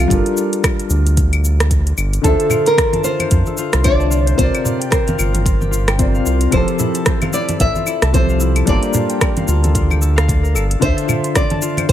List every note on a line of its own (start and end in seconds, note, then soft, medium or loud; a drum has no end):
0.00 0.12 F3 medium
0.00 0.12 C4 medium
0.00 0.12 E4 medium
0.00 1.67 F4 medium
0.00 0.12 G4 medium
0.00 0.12 A4 medium
0.08 0.22 G1 loud
0.08 1.67 G3 loud
0.08 1.68 D4 medium
0.08 1.68 F4 medium
0.08 kick medium
0.08 closed hi-hat medium
0.08 shaker soft
0.12 1.69 A4 medium
0.12 1.70 A#4 loud
0.26 closed hi-hat soft
0.26 shaker soft
0.37 shaker medium
0.53 closed hi-hat soft
0.53 shaker soft
0.64 kick loud
0.64 cross-stick medium
0.64 closed hi-hat medium
0.64 claves medium
0.64 shaker soft
0.80 closed hi-hat soft
0.80 shaker soft
0.90 1.93 D2 loud
0.90 shaker medium
1.07 closed hi-hat soft
1.07 shaker soft
1.17 kick loud
1.17 closed hi-hat medium
1.17 shaker soft
1.33 closed hi-hat soft
1.33 claves medium
1.33 shaker soft
1.45 shaker medium
1.60 cross-stick medium
1.60 closed hi-hat soft
1.60 shaker soft
1.71 kick loud
1.71 closed hi-hat medium
1.71 shaker soft
1.87 closed hi-hat soft
1.87 shaker soft
1.97 2.19 G1 medium
1.97 claves medium
1.97 shaker medium
2.13 closed hi-hat soft
2.13 shaker soft
2.21 2.36 D2 loud
2.21 3.81 D3 loud
2.21 3.82 D4 medium
2.21 2.50 F4 medium
2.21 3.83 F4 medium
2.21 2.67 A4 medium
2.21 kick loud
2.21 closed hi-hat medium
2.21 shaker soft
2.26 3.83 C5 medium
2.26 3.84 E5 loud
2.39 3.47 A4 medium
2.39 closed hi-hat soft
2.39 shaker soft
2.50 3.04 F4 medium
2.50 low conga medium
2.50 claves medium
2.50 shaker medium
2.65 3.04 A#4 medium
2.65 3.73 C6 medium
2.65 closed hi-hat soft
2.65 shaker soft
2.77 3.84 D5 medium
2.77 kick loud
2.77 cross-stick medium
2.77 closed hi-hat medium
2.77 shaker soft
2.93 3.99 A5 medium
2.93 closed hi-hat soft
2.93 high conga medium
2.93 shaker soft
3.04 3.31 F4 loud
3.04 3.84 C5 loud
3.04 shaker medium
3.20 4.26 C5 medium
3.20 closed hi-hat soft
3.20 high conga medium
3.20 claves medium
3.20 shaker soft
3.31 3.43 F2 medium
3.31 3.58 F4 medium
3.31 kick loud
3.31 closed hi-hat medium
3.31 shaker soft
3.46 5.39 A4 medium
3.46 high conga medium
3.46 shaker soft
3.57 4.10 F4 loud
3.57 shaker medium
3.73 4.34 C2 medium
3.73 5.04 C6 medium
3.73 cross-stick medium
3.73 closed hi-hat soft
3.73 shaker soft
3.84 4.35 D3 medium
3.84 4.36 D4 medium
3.84 4.36 F4 medium
3.84 4.37 C5 medium
3.84 5.69 D5 medium
3.84 4.37 D5 loud
3.84 4.37 E5 medium
3.84 kick loud
3.84 closed hi-hat medium
3.84 claves medium
3.84 shaker soft
3.99 5.39 A5 medium
3.99 shaker soft
4.10 4.38 F4 loud
4.10 shaker medium
4.26 4.92 C5 medium
4.26 closed hi-hat soft
4.26 shaker soft
4.37 4.51 C2 loud
4.37 5.96 C3 medium
4.37 5.96 C4 medium
4.37 4.64 F4 medium
4.37 5.97 F4 medium
4.37 4.94 C5 loud
4.37 kick loud
4.37 closed hi-hat medium
4.37 shaker soft
4.41 5.98 A#4 medium
4.41 5.99 D5 loud
4.53 5.60 G4 medium
4.53 closed hi-hat soft
4.53 claves medium
4.53 shaker soft
4.64 5.18 F4 loud
4.64 low conga medium
4.64 shaker medium
4.80 5.87 G5 medium
4.80 closed hi-hat soft
4.80 shaker soft
4.90 6.21 A#4 medium
4.90 5.98 C5 medium
4.90 kick loud
4.90 cross-stick medium
4.90 closed hi-hat medium
4.90 shaker soft
5.07 6.14 F5 medium
5.07 closed hi-hat soft
5.07 high conga medium
5.07 shaker soft
5.18 6.22 G1 loud
5.18 5.44 F4 loud
5.18 claves medium
5.18 shaker medium
5.33 6.40 A#4 medium
5.33 closed hi-hat soft
5.33 high conga medium
5.33 shaker soft
5.45 5.71 F4 medium
5.45 kick loud
5.45 closed hi-hat medium
5.45 shaker soft
5.60 7.96 G4 medium
5.60 high conga medium
5.60 shaker soft
5.71 6.25 F4 loud
5.71 shaker medium
5.87 7.43 G5 medium
5.87 cross-stick medium
5.87 closed hi-hat soft
5.87 claves medium
5.87 shaker soft
5.98 6.50 C3 medium
5.98 6.50 C4 medium
5.98 6.51 F4 medium
5.98 6.51 A#4 medium
5.98 7.05 C5 medium
5.98 6.51 D5 medium
5.98 kick loud
5.98 closed hi-hat medium
5.98 shaker soft
6.15 6.59 F5 medium
6.15 shaker soft
6.25 6.48 C2 medium
6.25 6.59 F4 loud
6.25 shaker medium
6.41 7.01 A#4 medium
6.41 closed hi-hat soft
6.41 shaker soft
6.51 6.65 F1 loud
6.51 8.10 F3 medium
6.51 8.11 C4 medium
6.51 6.74 E4 medium
6.51 7.33 C5 medium
6.51 kick loud
6.51 closed hi-hat medium
6.51 claves medium
6.51 shaker soft
6.55 8.12 G4 medium
6.55 8.13 A4 loud
6.68 6.85 F4 medium
6.68 closed hi-hat soft
6.68 shaker soft
6.79 7.28 E4 loud
6.79 low conga medium
6.79 shaker medium
6.95 8.02 A5 medium
6.95 closed hi-hat soft
6.95 shaker soft
7.06 8.13 C5 medium
7.06 kick loud
7.06 cross-stick medium
7.06 closed hi-hat medium
7.06 shaker soft
7.22 7.39 F5 medium
7.22 closed hi-hat soft
7.22 high conga loud
7.22 claves medium
7.22 shaker soft
7.33 7.60 E4 loud
7.33 7.60 D5 loud
7.33 shaker medium
7.49 8.56 A4 medium
7.49 closed hi-hat soft
7.49 high conga medium
7.49 shaker soft
7.60 7.72 A1 loud
7.60 7.82 E4 medium
7.60 8.14 E5 loud
7.60 kick loud
7.60 closed hi-hat medium
7.60 shaker soft
7.75 7.93 F4 medium
7.75 high conga medium
7.75 shaker soft
7.87 8.36 E4 loud
7.87 claves medium
7.87 shaker medium
8.02 8.63 C2 medium
8.02 9.27 A5 medium
8.02 cross-stick medium
8.02 closed hi-hat soft
8.02 shaker soft
8.13 8.64 F3 medium
8.13 8.65 C4 medium
8.13 8.65 G4 medium
8.13 8.66 A4 medium
8.13 10.11 C5 medium
8.13 8.69 C5 medium
8.13 kick loud
8.13 closed hi-hat medium
8.13 shaker soft
8.29 8.46 F5 medium
8.29 shaker soft
8.40 8.73 E4 loud
8.40 shaker medium
8.56 9.27 A4 medium
8.56 closed hi-hat soft
8.56 claves medium
8.56 shaker soft
8.65 8.79 G1 loud
8.65 10.24 G3 medium
8.65 10.25 D4 medium
8.65 8.94 F4 medium
8.65 10.26 F4 medium
8.65 10.52 D5 medium
8.65 kick loud
8.65 closed hi-hat soft
8.65 shaker soft
8.70 10.27 A#3 loud
8.70 10.27 A5 medium
8.82 9.90 G4 medium
8.82 closed hi-hat soft
8.82 shaker soft
8.94 9.47 F4 medium
8.94 low conga medium
8.94 shaker medium
9.10 10.65 G5 medium
9.10 closed hi-hat soft
9.10 shaker soft
9.21 9.69 A#4 medium
9.21 kick loud
9.21 cross-stick medium
9.21 closed hi-hat medium
9.21 claves medium
9.21 shaker soft
9.37 10.16 F5 medium
9.37 closed hi-hat soft
9.37 high conga medium
9.37 shaker soft
9.48 10.28 D2 loud
9.48 9.74 F4 loud
9.48 shaker medium
9.63 10.01 A4 medium
9.63 closed hi-hat soft
9.63 high conga medium
9.63 shaker soft
9.75 10.80 F4 medium
9.75 kick loud
9.75 closed hi-hat medium
9.75 shaker soft
9.90 11.92 G4 medium
9.90 high conga medium
9.90 claves medium
9.90 shaker soft
10.01 10.49 A4 medium
10.01 shaker medium
10.16 11.83 F5 loud
10.16 cross-stick medium
10.16 closed hi-hat soft
10.16 shaker soft
10.28 10.56 D2 loud
10.28 11.35 D5 medium
10.28 kick loud
10.28 closed hi-hat medium
10.28 shaker medium
10.43 10.61 A#4 medium
10.43 shaker soft
10.55 10.76 G1 medium
10.55 10.69 A4 loud
10.55 claves medium
10.55 shaker medium
10.70 10.96 A4 medium
10.70 closed hi-hat soft
10.70 shaker soft
10.80 10.94 D2 medium
10.80 11.92 D3 loud
10.80 11.92 D4 medium
10.80 11.07 F4 medium
10.80 11.92 F4 medium
10.80 11.36 C5 loud
10.80 kick loud
10.80 closed hi-hat medium
10.80 shaker soft
10.84 11.92 C5 medium
10.84 11.92 E5 loud
10.96 11.92 A4 medium
10.96 closed hi-hat soft
10.96 shaker soft
11.07 11.62 F4 loud
11.07 low conga medium
11.07 claves medium
11.07 shaker medium
11.24 11.92 C6 medium
11.24 closed hi-hat soft
11.24 shaker soft
11.35 11.92 D5 medium
11.35 11.89 D5 loud
11.35 kick loud
11.35 cross-stick medium
11.35 closed hi-hat medium
11.35 shaker soft
11.50 11.92 A5 medium
11.50 closed hi-hat soft
11.50 high conga medium
11.50 shaker soft
11.62 11.88 F4 loud
11.62 shaker medium
11.77 11.92 C5 medium
11.77 closed hi-hat soft
11.77 high conga medium
11.77 claves medium
11.77 shaker soft
11.89 11.92 F2 loud
11.89 11.92 F4 medium
11.89 11.92 C5 loud
11.89 kick loud
11.89 closed hi-hat medium